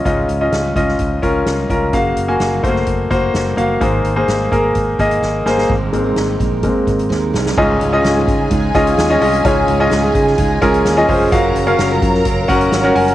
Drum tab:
CC |----------------|----------------|----------------|x---------------|
HH |x-x-x-x-x-x-x-x-|x-x-x-x-x-x-x-x-|x-x-x-x-x-xx----|--x-x-x-x-xx----|
SD |----o--o----o---|----o--o----o---|----o-------o-oo|----o-------o-oo|
BD |o-----o-o-o---o-|o-----o-o-o-----|o-----o-o-o-----|o-----o-o-o-----|

CC |x---------------|----------------|----------------|
HH |--x-x-x-x-xxx-ox|x-x-x-x-x-xxx-o-|x-x-x-x-x-xxx-ox|
SD |----o-------o---|----o--o----o---|----o--o----o---|
BD |o-----o-o-o-----|o-----o-o-o---o-|o-----o-o-o-----|